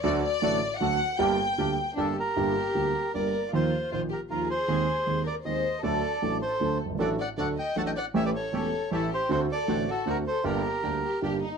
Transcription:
<<
  \new Staff \with { instrumentName = "Bandoneon" } { \time 3/4 \key g \minor \tempo 4 = 156 r2. | r2 a'8 bes'8~ | bes'2 d''4 | c''4 c''8 bes'8 bes'8 c''8~ |
c''4. d''8 ees''4 | d''4. c''4 r8 | d''8 fis''8 fis''8 g''8 a''16 g''16 fis''8 | e''16 d''16 cis''8 cis''4 a'8 c''8 |
c''8 d''4 a'8 bes'8 c''8 | bes'2 r4 | }
  \new Staff \with { instrumentName = "Violin section" } { \time 3/4 \key g \minor << { d''8 d''4. fis''4 | g''2 r4 | r2. | r2. |
r2. | r2. | r2. | r2. |
r2. | r4. g'8 g'8 ees'8 | } \\ { r2. | r2 d'8 g'8~ | g'2 bes'4 | f'4 f'8 g'8 f'8 aes'8~ |
aes'4. bes'8 c''4 | a'4. a'4 r8 | a'8 d''8 d''8 ees''8 fis''16 ees''16 d''8 | cis''16 b'16 a'8 a'4 e'8 g'8 |
a'8 a'4 fis'8 fis'8 a'8 | g'2 r4 | } >> }
  \new Staff \with { instrumentName = "Bandoneon" } { \time 3/4 \key g \minor <a d' fis'>8 r8 <a d' fis'>8 r8 <a d' fis'>8 r8 | <bes d' g'>8 r8 <bes d' g'>8 r8 <bes d' g'>8 r8 | r2. | r2. |
r2. | r2. | <a d' fis'>8 r8 <a d' fis'>8 r8 <a d' fis'>8 r8 | <a cis' g'>8 r8 <a cis' g'>8 r8 <a cis' g'>8 r8 |
<c' d' fis'>8 r8 <c' d' fis'>8 r8 <c' d' fis'>8 r8 | <bes d' g'>8 r8 <bes d' g'>8 r8 <bes d' g'>8 r8 | }
  \new Staff \with { instrumentName = "Grand piano" } { \clef bass \time 3/4 \key g \minor <d, d fis a fis'>8 r8 <a,, a, d fis a fis'>8 r8 <d, d fis a fis'>8 r8 | <g,, g, d g bes g'>8 r8 <d, d g bes g'>8 r8 <g,, g, d g bes g'>8 r8 | <g,, g, d g bes g'>8 r8 <d, d g bes g'>8 r8 <g,, g, d g bes g'>8 r8 | <ees, ees f bes f'>8 r8 <bes,, bes, ees f bes f'>8 r8 <ees, ees f bes f'>8 r8 |
<ees, ees aes c' aes'>8 r8 <ees, ees aes c' aes'>8 r8 <ees, ees aes c' aes'>8 r8 | <d, d fis a d' a'>8 r8 <a,, a, fis a d' a'>8 r8 <d, d fis a d' a'>8 r32 fis,,32 g,,32 aes,,32 | <a,, a, fis a d' a'>8 r8 <d, d fis a d' a'>8 r8 <a,, a, fis a d' a'>8 r8 | <a,, a, e a cis' g'>8 r8 <e,, e, e a cis' g'>8 r8 <a,, a, e a cis' g'>8 r8 |
<d, d a c' fis'>8 r8 <a,, a, d a c' fis'>8 r8 <d, d a c' fis'>8 r8 | <g,, g, d g bes g'>8 r8 <d, d g bes g'>8 r8 <g,, g, d g bes g'>8 r8 | }
>>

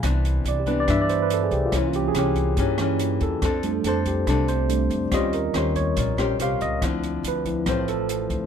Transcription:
<<
  \new Staff \with { instrumentName = "Tine electric piano" } { \time 4/4 \key c \major \tempo 4 = 142 r4 d''16 g'16 b'16 d''16 e''16 d''16 c''16 b'16 a'16 aes'16 g'16 f'16 | e'16 f'16 g'16 aes'16 g'4. r4 a'8~ | a'4 c''8 g'8 r8 c''4. | ees''8 bes'8 r8 des''4. f''8 ees''8 |
r4 b'4 c''8 a'4. | }
  \new Staff \with { instrumentName = "Tine electric piano" } { \time 4/4 \key c \major r4. <e b d'>4. r4 | <e bes des'>8 r2 <e bes des'>8 r4 | r8 <g a d'>2~ <g a d'>8 <g a d'>8 r8 | <g c' des' f'>8 r2. r8 |
r4. <f c' e'>2~ <f c' e'>8 | }
  \new Staff \with { instrumentName = "Nylon-string guitar" } { \time 4/4 \key c \major << { <e b d'>4. <e b d'>8 <e b d'>4. r8 | <e bes des'>4 <e bes des'>4 <e bes des'>8 <e bes des'>4. | <c' d' a'>8 r8 <c' d' a'>4 <c' d' a'>2 | <des' g' c''>8 r8 <des' g' c''>4 r8 <des' g' c''>8 <des' g' c''>4 |
<f c' e'>2 <f c' e'>2 | } \\ { c2 g,2 | c2 g,2 | f2 c2 | ees2 bes,2 |
d2 a,2 | } >> }
  \new Staff \with { instrumentName = "Upright bass" } { \clef bass \time 4/4 \key c \major c,4 c,4 g,4. c,8 | c,4 c,4 g,4. e,8 | f,4 f,4 c,4. f,8 | ees,4 ees,4 bes,,8 bes,,8 c,8 des,8 |
d,4 d,4 a,,4. d,8 | }
  \new DrumStaff \with { instrumentName = "Drums" } \drummode { \time 4/4 <hh bd ss>8 hh8 hh8 <hh bd>8 <hh bd ss>8 hh8 hh8 <hh bd>8 | <hh bd ss>8 hh8 <hh ss>8 <hh bd>8 <hh bd>8 <hh ss>8 hh8 <hh bd>8 | <hh bd ss>8 hh8 hh8 <hh bd>8 <hh bd ss>8 hh8 hh8 <hh bd>8 | <hh bd ss>8 hh8 <hh ss>8 <hh bd>8 <hh bd>8 <hh ss>8 hh8 <hh bd>8 |
<hh bd ss>8 hh8 hh8 <hh bd>8 <hh bd ss>8 hh8 hh8 <hh bd>8 | }
>>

